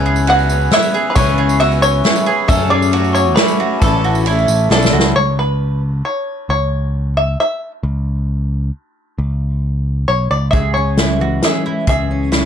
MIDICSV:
0, 0, Header, 1, 8, 480
1, 0, Start_track
1, 0, Tempo, 444115
1, 1254, Time_signature, 3, 2, 24, 8
1, 6057, Tempo, 448430
1, 13388, End_track
2, 0, Start_track
2, 0, Title_t, "Glockenspiel"
2, 0, Program_c, 0, 9
2, 0, Note_on_c, 0, 92, 85
2, 265, Note_off_c, 0, 92, 0
2, 299, Note_on_c, 0, 90, 78
2, 743, Note_off_c, 0, 90, 0
2, 779, Note_on_c, 0, 88, 82
2, 1152, Note_off_c, 0, 88, 0
2, 1190, Note_on_c, 0, 83, 54
2, 1254, Note_off_c, 0, 83, 0
2, 1254, Note_on_c, 0, 85, 75
2, 1699, Note_off_c, 0, 85, 0
2, 1744, Note_on_c, 0, 88, 79
2, 1961, Note_off_c, 0, 88, 0
2, 1990, Note_on_c, 0, 85, 76
2, 2656, Note_off_c, 0, 85, 0
2, 2700, Note_on_c, 0, 88, 77
2, 2918, Note_off_c, 0, 88, 0
2, 2935, Note_on_c, 0, 86, 80
2, 3378, Note_off_c, 0, 86, 0
2, 3385, Note_on_c, 0, 85, 73
2, 3618, Note_on_c, 0, 83, 73
2, 3619, Note_off_c, 0, 85, 0
2, 4079, Note_off_c, 0, 83, 0
2, 4102, Note_on_c, 0, 81, 65
2, 5034, Note_off_c, 0, 81, 0
2, 13388, End_track
3, 0, Start_track
3, 0, Title_t, "Five-string banjo"
3, 0, Program_c, 1, 105
3, 0, Note_on_c, 1, 80, 91
3, 317, Note_off_c, 1, 80, 0
3, 321, Note_on_c, 1, 78, 101
3, 790, Note_off_c, 1, 78, 0
3, 794, Note_on_c, 1, 76, 98
3, 1189, Note_on_c, 1, 71, 77
3, 1200, Note_off_c, 1, 76, 0
3, 1243, Note_off_c, 1, 71, 0
3, 1248, Note_on_c, 1, 73, 91
3, 1696, Note_off_c, 1, 73, 0
3, 1728, Note_on_c, 1, 76, 89
3, 1965, Note_off_c, 1, 76, 0
3, 1969, Note_on_c, 1, 73, 101
3, 2680, Note_off_c, 1, 73, 0
3, 2684, Note_on_c, 1, 76, 96
3, 2916, Note_off_c, 1, 76, 0
3, 2921, Note_on_c, 1, 74, 84
3, 3371, Note_off_c, 1, 74, 0
3, 3399, Note_on_c, 1, 73, 91
3, 3628, Note_on_c, 1, 71, 86
3, 3651, Note_off_c, 1, 73, 0
3, 4125, Note_off_c, 1, 71, 0
3, 4129, Note_on_c, 1, 69, 79
3, 5048, Note_off_c, 1, 69, 0
3, 5102, Note_on_c, 1, 69, 87
3, 5574, Note_on_c, 1, 73, 88
3, 5593, Note_off_c, 1, 69, 0
3, 5822, Note_off_c, 1, 73, 0
3, 5825, Note_on_c, 1, 71, 65
3, 6267, Note_off_c, 1, 71, 0
3, 6534, Note_on_c, 1, 73, 67
3, 7003, Note_off_c, 1, 73, 0
3, 7015, Note_on_c, 1, 73, 81
3, 7691, Note_off_c, 1, 73, 0
3, 7734, Note_on_c, 1, 76, 90
3, 7968, Note_off_c, 1, 76, 0
3, 7981, Note_on_c, 1, 76, 79
3, 8312, Note_off_c, 1, 76, 0
3, 10847, Note_on_c, 1, 73, 73
3, 11087, Note_off_c, 1, 73, 0
3, 11091, Note_on_c, 1, 74, 74
3, 11301, Note_off_c, 1, 74, 0
3, 11305, Note_on_c, 1, 76, 85
3, 11547, Note_off_c, 1, 76, 0
3, 11552, Note_on_c, 1, 73, 67
3, 12009, Note_off_c, 1, 73, 0
3, 12310, Note_on_c, 1, 76, 81
3, 12776, Note_off_c, 1, 76, 0
3, 12789, Note_on_c, 1, 76, 84
3, 13388, Note_off_c, 1, 76, 0
3, 13388, End_track
4, 0, Start_track
4, 0, Title_t, "Mandolin"
4, 0, Program_c, 2, 25
4, 62, Note_on_c, 2, 68, 85
4, 294, Note_off_c, 2, 68, 0
4, 303, Note_on_c, 2, 66, 80
4, 769, Note_off_c, 2, 66, 0
4, 788, Note_on_c, 2, 64, 75
4, 1015, Note_off_c, 2, 64, 0
4, 1019, Note_on_c, 2, 68, 78
4, 1251, Note_off_c, 2, 68, 0
4, 1258, Note_on_c, 2, 71, 91
4, 1490, Note_off_c, 2, 71, 0
4, 1491, Note_on_c, 2, 68, 80
4, 1726, Note_off_c, 2, 68, 0
4, 1736, Note_on_c, 2, 66, 86
4, 2203, Note_off_c, 2, 66, 0
4, 2211, Note_on_c, 2, 64, 71
4, 2442, Note_off_c, 2, 64, 0
4, 2446, Note_on_c, 2, 68, 76
4, 2683, Note_off_c, 2, 68, 0
4, 2689, Note_on_c, 2, 69, 88
4, 2925, Note_off_c, 2, 69, 0
4, 2926, Note_on_c, 2, 68, 77
4, 3162, Note_off_c, 2, 68, 0
4, 3169, Note_on_c, 2, 66, 83
4, 3639, Note_off_c, 2, 66, 0
4, 3652, Note_on_c, 2, 64, 79
4, 3884, Note_off_c, 2, 64, 0
4, 3889, Note_on_c, 2, 66, 76
4, 4124, Note_off_c, 2, 66, 0
4, 4134, Note_on_c, 2, 69, 83
4, 4367, Note_off_c, 2, 69, 0
4, 4371, Note_on_c, 2, 66, 76
4, 4606, Note_off_c, 2, 66, 0
4, 4616, Note_on_c, 2, 64, 84
4, 5085, Note_off_c, 2, 64, 0
4, 5090, Note_on_c, 2, 62, 81
4, 5322, Note_off_c, 2, 62, 0
4, 5326, Note_on_c, 2, 66, 77
4, 5565, Note_off_c, 2, 66, 0
4, 11334, Note_on_c, 2, 68, 72
4, 11805, Note_off_c, 2, 68, 0
4, 11824, Note_on_c, 2, 64, 68
4, 12055, Note_off_c, 2, 64, 0
4, 12060, Note_on_c, 2, 66, 60
4, 12293, Note_off_c, 2, 66, 0
4, 12302, Note_on_c, 2, 68, 61
4, 12533, Note_off_c, 2, 68, 0
4, 12538, Note_on_c, 2, 64, 62
4, 12767, Note_off_c, 2, 64, 0
4, 12771, Note_on_c, 2, 68, 69
4, 13239, Note_off_c, 2, 68, 0
4, 13243, Note_on_c, 2, 64, 75
4, 13388, Note_off_c, 2, 64, 0
4, 13388, End_track
5, 0, Start_track
5, 0, Title_t, "Twelve-string acoustic guitar"
5, 0, Program_c, 3, 25
5, 0, Note_on_c, 3, 49, 75
5, 0, Note_on_c, 3, 52, 72
5, 0, Note_on_c, 3, 59, 86
5, 0, Note_on_c, 3, 61, 84
5, 0, Note_on_c, 3, 68, 83
5, 292, Note_off_c, 3, 52, 0
5, 299, Note_off_c, 3, 59, 0
5, 300, Note_off_c, 3, 49, 0
5, 305, Note_on_c, 3, 52, 65
5, 312, Note_on_c, 3, 59, 65
5, 317, Note_off_c, 3, 61, 0
5, 318, Note_off_c, 3, 68, 0
5, 322, Note_on_c, 3, 61, 63
5, 322, Note_on_c, 3, 68, 67
5, 532, Note_off_c, 3, 68, 0
5, 540, Note_off_c, 3, 52, 0
5, 541, Note_off_c, 3, 61, 0
5, 543, Note_off_c, 3, 59, 0
5, 545, Note_on_c, 3, 68, 40
5, 554, Note_on_c, 3, 61, 36
5, 566, Note_on_c, 3, 59, 36
5, 776, Note_off_c, 3, 59, 0
5, 779, Note_off_c, 3, 61, 0
5, 779, Note_off_c, 3, 68, 0
5, 781, Note_on_c, 3, 52, 56
5, 789, Note_on_c, 3, 59, 63
5, 792, Note_on_c, 3, 61, 68
5, 796, Note_on_c, 3, 68, 71
5, 1247, Note_off_c, 3, 52, 0
5, 1252, Note_off_c, 3, 59, 0
5, 1258, Note_on_c, 3, 49, 79
5, 1260, Note_on_c, 3, 52, 88
5, 1262, Note_off_c, 3, 61, 0
5, 1264, Note_off_c, 3, 68, 0
5, 1265, Note_on_c, 3, 59, 76
5, 1266, Note_on_c, 3, 61, 79
5, 1268, Note_on_c, 3, 68, 82
5, 1711, Note_off_c, 3, 52, 0
5, 1722, Note_off_c, 3, 59, 0
5, 1724, Note_on_c, 3, 52, 56
5, 1734, Note_off_c, 3, 49, 0
5, 1735, Note_off_c, 3, 61, 0
5, 1735, Note_on_c, 3, 59, 63
5, 1740, Note_off_c, 3, 68, 0
5, 1740, Note_on_c, 3, 61, 59
5, 1744, Note_on_c, 3, 68, 62
5, 2188, Note_off_c, 3, 52, 0
5, 2195, Note_off_c, 3, 59, 0
5, 2201, Note_on_c, 3, 52, 62
5, 2208, Note_on_c, 3, 59, 61
5, 2211, Note_off_c, 3, 61, 0
5, 2211, Note_off_c, 3, 68, 0
5, 2215, Note_on_c, 3, 61, 65
5, 2224, Note_on_c, 3, 68, 68
5, 2433, Note_off_c, 3, 68, 0
5, 2441, Note_off_c, 3, 61, 0
5, 2446, Note_off_c, 3, 52, 0
5, 2446, Note_on_c, 3, 68, 49
5, 2449, Note_off_c, 3, 59, 0
5, 2454, Note_on_c, 3, 61, 43
5, 2464, Note_on_c, 3, 59, 39
5, 2676, Note_off_c, 3, 61, 0
5, 2678, Note_on_c, 3, 42, 75
5, 2679, Note_on_c, 3, 49, 82
5, 2681, Note_off_c, 3, 68, 0
5, 2682, Note_off_c, 3, 59, 0
5, 2685, Note_on_c, 3, 54, 79
5, 2686, Note_on_c, 3, 57, 83
5, 2689, Note_on_c, 3, 61, 88
5, 2694, Note_on_c, 3, 68, 92
5, 3149, Note_off_c, 3, 54, 0
5, 3162, Note_on_c, 3, 54, 66
5, 3163, Note_off_c, 3, 42, 0
5, 3164, Note_off_c, 3, 49, 0
5, 3166, Note_off_c, 3, 57, 0
5, 3169, Note_off_c, 3, 61, 0
5, 3170, Note_on_c, 3, 57, 69
5, 3171, Note_off_c, 3, 68, 0
5, 3173, Note_on_c, 3, 61, 63
5, 3184, Note_on_c, 3, 68, 61
5, 3633, Note_off_c, 3, 54, 0
5, 3637, Note_off_c, 3, 57, 0
5, 3646, Note_on_c, 3, 54, 68
5, 3647, Note_off_c, 3, 68, 0
5, 3650, Note_off_c, 3, 61, 0
5, 3650, Note_on_c, 3, 57, 60
5, 3654, Note_on_c, 3, 61, 69
5, 3660, Note_on_c, 3, 68, 76
5, 4124, Note_off_c, 3, 57, 0
5, 4128, Note_off_c, 3, 54, 0
5, 4130, Note_on_c, 3, 45, 80
5, 4135, Note_off_c, 3, 68, 0
5, 4135, Note_on_c, 3, 52, 87
5, 4137, Note_on_c, 3, 57, 83
5, 4139, Note_off_c, 3, 61, 0
5, 4139, Note_on_c, 3, 61, 80
5, 4144, Note_on_c, 3, 64, 87
5, 4144, Note_on_c, 3, 69, 84
5, 4589, Note_off_c, 3, 57, 0
5, 4598, Note_off_c, 3, 61, 0
5, 4599, Note_off_c, 3, 64, 0
5, 4602, Note_on_c, 3, 57, 62
5, 4603, Note_off_c, 3, 69, 0
5, 4610, Note_off_c, 3, 45, 0
5, 4611, Note_on_c, 3, 61, 57
5, 4612, Note_on_c, 3, 64, 64
5, 4613, Note_off_c, 3, 52, 0
5, 4616, Note_on_c, 3, 69, 63
5, 5065, Note_off_c, 3, 57, 0
5, 5075, Note_off_c, 3, 61, 0
5, 5078, Note_on_c, 3, 57, 62
5, 5080, Note_off_c, 3, 64, 0
5, 5088, Note_on_c, 3, 61, 71
5, 5090, Note_off_c, 3, 69, 0
5, 5093, Note_on_c, 3, 64, 79
5, 5103, Note_on_c, 3, 69, 78
5, 5567, Note_off_c, 3, 57, 0
5, 5572, Note_off_c, 3, 61, 0
5, 5574, Note_off_c, 3, 64, 0
5, 5579, Note_off_c, 3, 69, 0
5, 13388, End_track
6, 0, Start_track
6, 0, Title_t, "Steel-string acoustic guitar"
6, 0, Program_c, 4, 25
6, 11335, Note_on_c, 4, 49, 63
6, 11587, Note_on_c, 4, 61, 45
6, 11822, Note_on_c, 4, 56, 54
6, 12048, Note_on_c, 4, 52, 55
6, 12055, Note_off_c, 4, 49, 0
6, 12297, Note_off_c, 4, 61, 0
6, 12301, Note_on_c, 4, 61, 55
6, 12535, Note_off_c, 4, 56, 0
6, 12548, Note_on_c, 4, 56, 50
6, 12753, Note_off_c, 4, 56, 0
6, 12775, Note_on_c, 4, 49, 67
6, 13013, Note_off_c, 4, 61, 0
6, 13018, Note_on_c, 4, 61, 49
6, 13258, Note_on_c, 4, 56, 50
6, 13388, Note_off_c, 4, 49, 0
6, 13388, Note_off_c, 4, 52, 0
6, 13388, Note_off_c, 4, 56, 0
6, 13388, Note_off_c, 4, 61, 0
6, 13388, End_track
7, 0, Start_track
7, 0, Title_t, "Picked electric bass"
7, 0, Program_c, 5, 34
7, 0, Note_on_c, 5, 37, 99
7, 731, Note_off_c, 5, 37, 0
7, 1257, Note_on_c, 5, 37, 105
7, 2169, Note_off_c, 5, 37, 0
7, 2691, Note_on_c, 5, 42, 101
7, 3606, Note_off_c, 5, 42, 0
7, 4128, Note_on_c, 5, 33, 98
7, 4807, Note_off_c, 5, 33, 0
7, 4845, Note_on_c, 5, 33, 78
7, 5064, Note_off_c, 5, 33, 0
7, 5083, Note_on_c, 5, 35, 76
7, 5303, Note_off_c, 5, 35, 0
7, 5331, Note_on_c, 5, 37, 83
7, 5549, Note_off_c, 5, 37, 0
7, 5573, Note_on_c, 5, 37, 83
7, 6492, Note_off_c, 5, 37, 0
7, 7005, Note_on_c, 5, 37, 76
7, 7926, Note_off_c, 5, 37, 0
7, 8443, Note_on_c, 5, 37, 83
7, 9366, Note_off_c, 5, 37, 0
7, 9889, Note_on_c, 5, 37, 87
7, 10809, Note_off_c, 5, 37, 0
7, 10852, Note_on_c, 5, 35, 72
7, 11069, Note_off_c, 5, 35, 0
7, 11089, Note_on_c, 5, 37, 75
7, 11307, Note_off_c, 5, 37, 0
7, 11331, Note_on_c, 5, 37, 88
7, 12251, Note_off_c, 5, 37, 0
7, 12771, Note_on_c, 5, 37, 95
7, 13388, Note_off_c, 5, 37, 0
7, 13388, End_track
8, 0, Start_track
8, 0, Title_t, "Drums"
8, 171, Note_on_c, 9, 54, 67
8, 279, Note_off_c, 9, 54, 0
8, 294, Note_on_c, 9, 51, 61
8, 402, Note_off_c, 9, 51, 0
8, 420, Note_on_c, 9, 54, 28
8, 528, Note_off_c, 9, 54, 0
8, 535, Note_on_c, 9, 54, 83
8, 643, Note_off_c, 9, 54, 0
8, 661, Note_on_c, 9, 54, 27
8, 765, Note_off_c, 9, 54, 0
8, 765, Note_on_c, 9, 54, 28
8, 772, Note_on_c, 9, 38, 85
8, 772, Note_on_c, 9, 51, 62
8, 873, Note_off_c, 9, 54, 0
8, 880, Note_off_c, 9, 38, 0
8, 880, Note_off_c, 9, 51, 0
8, 891, Note_on_c, 9, 54, 68
8, 999, Note_off_c, 9, 54, 0
8, 1247, Note_on_c, 9, 54, 90
8, 1255, Note_on_c, 9, 51, 63
8, 1256, Note_on_c, 9, 36, 107
8, 1355, Note_off_c, 9, 54, 0
8, 1363, Note_off_c, 9, 51, 0
8, 1364, Note_off_c, 9, 36, 0
8, 1614, Note_on_c, 9, 54, 74
8, 1722, Note_off_c, 9, 54, 0
8, 1732, Note_on_c, 9, 51, 57
8, 1840, Note_off_c, 9, 51, 0
8, 1856, Note_on_c, 9, 54, 28
8, 1964, Note_off_c, 9, 54, 0
8, 1975, Note_on_c, 9, 54, 91
8, 2083, Note_off_c, 9, 54, 0
8, 2100, Note_on_c, 9, 54, 31
8, 2208, Note_off_c, 9, 54, 0
8, 2214, Note_on_c, 9, 38, 87
8, 2214, Note_on_c, 9, 51, 62
8, 2222, Note_on_c, 9, 54, 28
8, 2322, Note_off_c, 9, 38, 0
8, 2322, Note_off_c, 9, 51, 0
8, 2330, Note_off_c, 9, 54, 0
8, 2330, Note_on_c, 9, 54, 69
8, 2438, Note_off_c, 9, 54, 0
8, 2689, Note_on_c, 9, 36, 111
8, 2694, Note_on_c, 9, 51, 61
8, 2696, Note_on_c, 9, 54, 94
8, 2798, Note_off_c, 9, 36, 0
8, 2802, Note_off_c, 9, 51, 0
8, 2804, Note_off_c, 9, 54, 0
8, 3051, Note_on_c, 9, 54, 70
8, 3159, Note_off_c, 9, 54, 0
8, 3165, Note_on_c, 9, 51, 60
8, 3273, Note_off_c, 9, 51, 0
8, 3289, Note_on_c, 9, 54, 28
8, 3397, Note_off_c, 9, 54, 0
8, 3407, Note_on_c, 9, 54, 77
8, 3515, Note_off_c, 9, 54, 0
8, 3531, Note_on_c, 9, 54, 27
8, 3639, Note_off_c, 9, 54, 0
8, 3643, Note_on_c, 9, 38, 88
8, 3643, Note_on_c, 9, 51, 66
8, 3651, Note_on_c, 9, 54, 27
8, 3751, Note_off_c, 9, 38, 0
8, 3751, Note_off_c, 9, 51, 0
8, 3759, Note_off_c, 9, 54, 0
8, 3762, Note_on_c, 9, 54, 68
8, 3871, Note_off_c, 9, 54, 0
8, 4124, Note_on_c, 9, 54, 82
8, 4126, Note_on_c, 9, 36, 101
8, 4126, Note_on_c, 9, 51, 68
8, 4232, Note_off_c, 9, 54, 0
8, 4234, Note_off_c, 9, 36, 0
8, 4234, Note_off_c, 9, 51, 0
8, 4370, Note_on_c, 9, 54, 24
8, 4478, Note_off_c, 9, 54, 0
8, 4485, Note_on_c, 9, 54, 61
8, 4593, Note_off_c, 9, 54, 0
8, 4602, Note_on_c, 9, 51, 61
8, 4626, Note_on_c, 9, 54, 30
8, 4710, Note_off_c, 9, 51, 0
8, 4734, Note_off_c, 9, 54, 0
8, 4741, Note_on_c, 9, 54, 27
8, 4843, Note_off_c, 9, 54, 0
8, 4843, Note_on_c, 9, 54, 94
8, 4951, Note_off_c, 9, 54, 0
8, 5086, Note_on_c, 9, 38, 58
8, 5194, Note_off_c, 9, 38, 0
8, 5214, Note_on_c, 9, 54, 79
8, 5242, Note_on_c, 9, 38, 74
8, 5322, Note_off_c, 9, 54, 0
8, 5351, Note_off_c, 9, 38, 0
8, 5401, Note_on_c, 9, 38, 111
8, 5509, Note_off_c, 9, 38, 0
8, 11329, Note_on_c, 9, 42, 52
8, 11332, Note_on_c, 9, 36, 92
8, 11436, Note_off_c, 9, 42, 0
8, 11439, Note_off_c, 9, 36, 0
8, 11806, Note_on_c, 9, 38, 76
8, 11806, Note_on_c, 9, 42, 55
8, 11913, Note_off_c, 9, 38, 0
8, 11913, Note_off_c, 9, 42, 0
8, 12287, Note_on_c, 9, 38, 76
8, 12287, Note_on_c, 9, 42, 55
8, 12394, Note_off_c, 9, 38, 0
8, 12394, Note_off_c, 9, 42, 0
8, 12765, Note_on_c, 9, 42, 57
8, 12769, Note_on_c, 9, 36, 95
8, 12872, Note_off_c, 9, 42, 0
8, 12876, Note_off_c, 9, 36, 0
8, 13249, Note_on_c, 9, 38, 75
8, 13249, Note_on_c, 9, 42, 52
8, 13356, Note_off_c, 9, 38, 0
8, 13356, Note_off_c, 9, 42, 0
8, 13388, End_track
0, 0, End_of_file